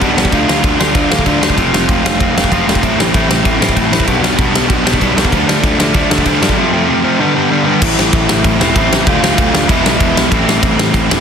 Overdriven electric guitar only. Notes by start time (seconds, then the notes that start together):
0.01 B2 G3 B3 D4
0.17 B2 G3 B3 D4
0.32 D3 A3 D4 F4
0.48 D3 A3 D4 F4
0.63 D3 A3 D4 F4
0.79 D3 A3 D4 F4
0.95 D3 A3 D4 F4
1.11 D3 A3 D4 F4
1.26 D3 A3 D4 F4
1.41 D3 A3 D4 F4
1.57 F3 A3 C4 F4
1.73 F3 A3 C4 F4
1.88 F3 A3 C4 F4
2.04 F3 A3 C4 F4
2.19 F3 A3 C4 F4
2.36 F3 A3 C4 F4
2.52 F3 A3 C4 F4
2.67 F3 A3 C4 F4
2.83 A2 E3 A3 C4 E4
2.99 A2 E3 A3 C4 E4
3.14 A2 E3 A3 C4 E4
3.30 A2 E3 A3 C4 E4
3.44 A2 E3 A3 C4 E4
3.60 A2 E3 A3 C4 E4
3.76 A2 E3 A3 C4 E4
3.92 A2 E3 A3 C4 E4
4.07 B2 G3 B3 D4
4.23 B2 G3 B3 D4
4.38 B2 G3 B3 D4
4.53 B2 G3 B3 D4
4.68 B2 G3 B3 D4
4.84 B2 G3 B3 D4
5.00 B2 G3 B3 D4
5.16 B2 G3 B3 D4
5.32 D3 F3 A3 D4
5.48 D3 F3 A3 D4
5.63 D3 F3 A3 D4
5.79 D3 F3 A3 D4
5.95 D3 F3 A3 D4
6.10 D3 F3 A3 D4
6.25 D3 F3 A3 D4
6.41 D3 F3 A3 D4
6.57 F2 C3 F3 A3 C4
6.73 F2 C3 F3 A3 C4
6.88 F2 C3 F3 A3 C4
7.03 F2 C3 F3 A3 C4
7.19 G2 D3 G3 B3 D4
7.35 G2 D3 G3 B3 D4
7.50 G2 D3 G3 B3 D4
7.65 G2 D3 G3 B3 D4
7.81 A2 E3 A3 C4 E4
8.59 A2 E3 A3 C4 E4
8.75 A2 E3 A3 C4 E4
9.06 D3 A3 D4 F4
9.68 E3 G#3 B3 E4
10.31 A2 E3 A3 C4 E4
11.10 A2 E3 A3 C4 E4